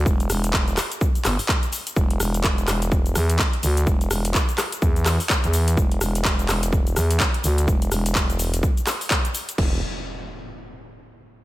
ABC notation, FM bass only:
X:1
M:4/4
L:1/16
Q:"Swing 16ths" 1/4=126
K:Ddor
V:1 name="FM bass" clef=bass
E,,,2 E,,,2 E,,,2 z4 G,,, z4 z | E,,,2 E,,,2 E,,,2 E,,,4 E,,2 z2 D,,2 | E,,,2 E,,,2 z4 E,,3 z2 E,,3 | E,,,2 E,,,2 E,,,2 E,,,4 E,,2 z2 D,,2 |
E,,,2 E,,,2 E,,,4 z8 | E,,,2 z12 z2 |]